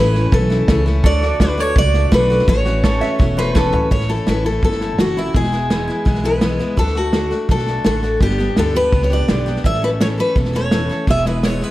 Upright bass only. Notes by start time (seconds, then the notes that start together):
Already playing: A1
0.32 B1
0.68 C#2
1.04 D2
1.40 D2
1.76 C#2
2.12 B1
2.48 A1
3.20 E1
3.91 A1
4.27 A1
4.63 G1
4.99 F#1
5.35 E1
6.06 B1
6.78 D2
7.49 B1
7.85 A1
8.21 G1
8.57 D2
8.93 C#2
9.29 B1
9.65 A1
10.36 E1
11.07 E1